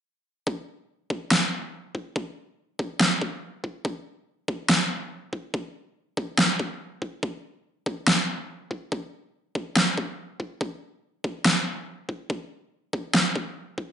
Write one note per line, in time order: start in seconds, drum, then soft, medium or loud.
0.47 kick loud
1.10 kick medium
1.31 snare loud
1.95 kick medium
2.16 kick loud
2.79 kick medium
3.00 snare loud
3.22 kick loud
3.64 kick medium
3.85 kick loud
4.48 kick loud
4.69 snare loud
5.33 kick medium
5.54 kick loud
6.17 kick loud
6.38 snare loud
6.60 kick loud
7.02 kick medium
7.23 kick loud
7.86 kick loud
8.07 snare loud
8.71 kick medium
8.92 kick loud
9.55 kick medium
9.76 snare loud
9.98 kick loud
10.40 kick medium
10.61 kick loud
11.24 kick medium
11.45 snare loud
12.09 kick medium
12.30 kick loud
12.93 kick medium
13.14 snare loud
13.36 kick medium
13.78 kick medium